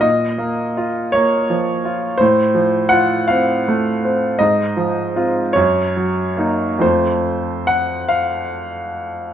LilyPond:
<<
  \new Staff \with { instrumentName = "Grand piano" } { \time 12/8 \key f \phrygian \tempo 4. = 53 ees''4. des''4. c''4 ges''8 f''4. | ees''4. des''4. c''4 ges''8 f''4. | }
  \new Staff \with { instrumentName = "Grand piano" } { \time 12/8 \key f \phrygian bes,8 bes8 f'8 bes8 f8 f'8 a,8 f8 f'8 c'8 a8 c'8 | aes,8 f8 <c' f'>8 ges,8 ges8 <bes ees'>8 <f, f a f'>2. | }
>>